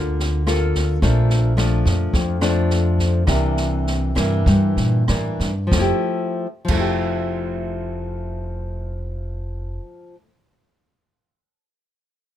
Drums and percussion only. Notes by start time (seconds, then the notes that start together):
0.20 snare
0.47 cross-stick, snare
0.75 kick, snare
1.02 kick, snare
1.30 snare
1.58 cross-stick, snare
1.85 kick, snare
2.13 kick, snare
2.41 cross-stick, snare
2.70 snare
2.99 kick, snare
3.27 kick, cross-stick, snare
3.57 snare
3.87 snare
4.16 kick, cross-stick, snare
4.46 kick, snare
4.77 snare
5.08 cross-stick, snare
5.39 kick, snare
5.72 kick, snare
6.68 kick, crash